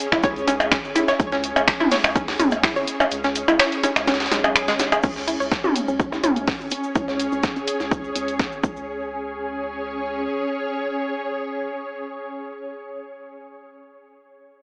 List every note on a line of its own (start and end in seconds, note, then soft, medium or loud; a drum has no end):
0.00 5.02 C#4 medium
0.00 5.04 G#4 medium
0.00 5.04 C#5 medium
0.00 closed hi-hat medium
0.00 cabasa loud
0.12 0.44 C#2 medium
0.12 0.20 E4 medium
0.12 finger snap medium
0.12 kick medium
0.12 snare soft
0.12 closed hi-hat soft
0.12 percussion blips medium
0.12 cabasa soft
0.23 0.27 C#5 medium
0.23 kick loud
0.23 closed hi-hat medium
0.23 percussion blips medium
0.23 cabasa medium
0.36 closed hi-hat soft
0.36 cabasa soft
0.47 0.80 C#2 medium
0.47 0.53 C#4 medium
0.47 closed hi-hat medium
0.47 open hi-hat medium
0.47 percussion blips medium
0.47 cabasa medium
0.60 open hi-hat soft
0.60 percussion blips medium
0.60 cabasa soft
0.72 0.77 C#4 medium
0.72 finger snap medium
0.72 kick loud
0.72 snare loud
0.72 closed hi-hat medium
0.72 cabasa medium
0.84 0.93 G#1 loud
0.84 cabasa soft
0.95 1.04 E4 medium
0.95 closed hi-hat medium
0.95 open hi-hat medium
0.95 percussion blips medium
0.95 cabasa loud
1.08 1.11 C#5 medium
1.08 snare soft
1.08 closed hi-hat soft
1.08 percussion blips soft
1.08 cabasa soft
1.20 1.52 C#2 loud
1.20 kick loud
1.20 closed hi-hat medium
1.20 cabasa medium
1.32 1.37 C#4 medium
1.32 snare medium
1.32 closed hi-hat soft
1.32 cabasa soft
1.44 closed hi-hat medium
1.44 open hi-hat medium
1.44 cabasa medium
1.56 1.65 C#2 medium
1.56 1.61 C#4 medium
1.56 closed hi-hat soft
1.56 percussion blips medium
1.56 cabasa soft
1.68 finger snap medium
1.68 kick loud
1.68 snare loud
1.68 closed hi-hat medium
1.68 cabasa soft
1.80 1.88 E4 medium
1.80 closed hi-hat soft
1.80 mid tom medium
1.80 cabasa soft
1.91 1.95 C#5 medium
1.91 snare loud
1.91 open hi-hat medium
1.91 cabasa medium
2.04 2.36 C#2 medium
2.04 finger snap medium
2.04 closed hi-hat soft
2.04 percussion blips medium
2.04 cabasa soft
2.16 2.21 C#4 medium
2.16 kick loud
2.16 closed hi-hat medium
2.16 cabasa medium
2.28 snare loud
2.28 closed hi-hat soft
2.28 open hi-hat medium
2.28 percussion blips medium
2.28 cabasa soft
2.40 2.72 C#2 medium
2.40 2.45 C#4 medium
2.40 open hi-hat medium
2.40 mid tom medium
2.40 cabasa medium
2.51 closed hi-hat medium
2.51 open hi-hat soft
2.51 percussion blips soft
2.51 cabasa soft
2.63 2.72 E4 medium
2.63 finger snap medium
2.63 kick loud
2.63 snare loud
2.63 closed hi-hat medium
2.63 open hi-hat medium
2.63 cabasa soft
2.76 2.85 G#1 loud
2.76 2.79 C#5 medium
2.76 cabasa soft
2.87 closed hi-hat medium
2.87 open hi-hat medium
2.87 cabasa medium
3.00 3.05 C#4 medium
3.00 closed hi-hat soft
3.00 percussion blips medium
3.00 cabasa soft
3.11 3.44 C#2 loud
3.11 closed hi-hat medium
3.11 cabasa soft
3.24 3.29 C#4 medium
3.24 snare medium
3.24 closed hi-hat soft
3.24 cabasa soft
3.35 closed hi-hat medium
3.35 open hi-hat medium
3.35 cabasa medium
3.48 3.57 C#2 medium
3.48 3.56 E4 medium
3.48 closed hi-hat soft
3.48 percussion blips medium
3.48 cabasa soft
3.59 3.63 C#5 medium
3.59 finger snap loud
3.59 snare loud
3.59 closed hi-hat medium
3.59 cabasa medium
3.72 closed hi-hat soft
3.72 open hi-hat soft
3.72 cabasa soft
3.83 3.89 C#4 medium
3.83 closed hi-hat medium
3.83 open hi-hat medium
3.83 percussion blips medium
3.83 cabasa medium
3.96 4.28 C#2 medium
3.96 finger snap medium
3.96 snare soft
3.96 closed hi-hat soft
3.96 percussion blips soft
3.96 cabasa soft
4.07 4.13 C#4 medium
4.07 snare medium
4.07 closed hi-hat medium
4.07 percussion blips medium
4.07 cabasa medium
4.14 snare medium
4.14 closed hi-hat medium
4.20 snare medium
4.20 closed hi-hat medium
4.20 closed hi-hat soft
4.20 cabasa soft
4.26 snare medium
4.26 closed hi-hat medium
4.31 4.70 B1 loud
4.31 4.37 G#3 medium
4.31 snare loud
4.31 closed hi-hat medium
4.31 open hi-hat medium
4.31 percussion blips medium
4.31 cabasa medium
4.44 4.52 G#4 medium
4.44 open hi-hat soft
4.44 percussion blips medium
4.44 cabasa soft
4.56 finger snap loud
4.56 closed hi-hat medium
4.56 cabasa medium
4.68 5.00 G#1 medium
4.68 4.71 G#3 loud
4.68 snare loud
4.68 closed hi-hat medium
4.68 closed hi-hat soft
4.68 cabasa soft
4.79 snare loud
4.79 closed hi-hat medium
4.79 open hi-hat medium
4.79 percussion blips medium
4.79 cabasa loud
4.92 4.95 G#4 medium
4.92 closed hi-hat soft
4.92 percussion blips medium
4.92 cabasa soft
5.03 5.36 C#2 loud
5.03 5.09 C#4 medium
5.03 8.62 C#4 medium
5.03 kick loud
5.03 closed hi-hat medium
5.03 crash medium
5.03 cabasa medium
5.16 snare medium
5.16 cabasa soft
5.28 5.36 E4 medium
5.28 closed hi-hat medium
5.28 open hi-hat medium
5.28 cabasa medium
5.40 5.49 C#2 medium
5.40 5.43 C#5 medium
5.40 closed hi-hat soft
5.40 cabasa soft
5.52 kick loud
5.52 snare loud
5.52 closed hi-hat medium
5.52 cabasa medium
5.64 5.69 C#4 medium
5.64 mid tom medium
5.64 cabasa soft
5.70 8.64 C#5 medium
5.76 closed hi-hat medium
5.76 open hi-hat medium
5.76 cabasa loud
5.88 6.20 C#2 medium
5.88 5.93 C#4 medium
5.88 cabasa soft
6.00 8.64 G#4 medium
6.00 kick loud
6.00 closed hi-hat medium
6.00 cabasa medium
6.12 6.20 E4 medium
6.12 snare soft
6.12 percussion blips soft
6.12 cabasa soft
6.24 6.56 C#2 medium
6.24 6.27 C#5 medium
6.24 closed hi-hat medium
6.24 open hi-hat medium
6.24 mid tom medium
6.24 cabasa medium
6.36 open hi-hat soft
6.36 cabasa soft
6.47 6.53 C#4 medium
6.47 kick loud
6.47 snare loud
6.47 open hi-hat medium
6.47 cabasa soft
6.60 6.69 G#1 loud
6.60 cabasa soft
6.70 6.77 C#4 medium
6.70 closed hi-hat medium
6.70 open hi-hat medium
6.70 cabasa medium
6.84 cabasa soft
6.95 7.28 C#2 loud
6.95 7.04 E4 medium
6.95 kick loud
6.95 closed hi-hat medium
6.95 cabasa soft
7.08 7.11 C#5 medium
7.08 snare soft
7.08 cabasa soft
7.20 closed hi-hat medium
7.20 open hi-hat medium
7.20 cabasa medium
7.32 7.41 C#2 medium
7.32 7.37 C#4 medium
7.32 cabasa soft
7.43 kick loud
7.43 snare loud
7.43 closed hi-hat medium
7.43 cabasa medium
7.56 7.61 C#4 medium
7.56 closed hi-hat soft
7.56 cabasa soft
7.68 closed hi-hat medium
7.68 open hi-hat medium
7.68 cabasa medium
7.80 8.12 C#2 medium
7.80 7.88 E4 medium
7.80 snare soft
7.80 cabasa soft
7.91 7.95 C#5 medium
7.91 kick loud
7.91 closed hi-hat medium
7.91 cabasa soft
8.04 cabasa soft
8.15 8.48 C#2 medium
8.15 8.21 C#4 medium
8.15 closed hi-hat medium
8.15 open hi-hat medium
8.15 cabasa medium
8.28 open hi-hat soft
8.28 cabasa soft
8.39 8.45 C#4 medium
8.39 kick loud
8.39 snare loud
8.39 closed hi-hat medium
8.39 cabasa medium
8.52 8.61 G#1 loud
8.52 cabasa soft
8.63 10.28 C#2 medium
8.63 9.08 C#4 medium
8.63 12.41 C#4 medium
8.63 kick loud
8.63 cabasa medium
8.71 12.49 G#4 medium
8.76 cabasa soft
9.03 12.80 C#5 medium